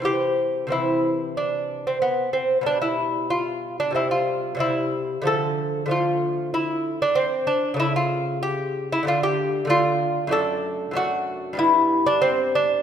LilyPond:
<<
  \new Staff \with { instrumentName = "Lute" } { \time 4/4 \key c \major \tempo 4 = 94 g'4 e'4 d'8. c'16 b8 c'8 | d'16 e'8. f'8. d'16 e'16 f'8. e'4 | a'4 f'4 e'8. d'16 c'8 d'8 | e'16 f'8. g'8. e'16 f'16 g'8. f'4 |
\key g \major a'4 fis'4 e'8. d'16 c'8 d'8 | }
  \new Staff \with { instrumentName = "Lute" } { \clef bass \time 4/4 \key c \major <c e c'>4 <c e c'>2. | <b, g>2 <c g c'>4 <c g c'>4 | <d f a>4 <d f a>2. | <cis a>2 <d a d'>4 <d a d'>4 |
\key g \major <fis, a d'>4 <fis, a d'>4 <g, g b>2 | }
>>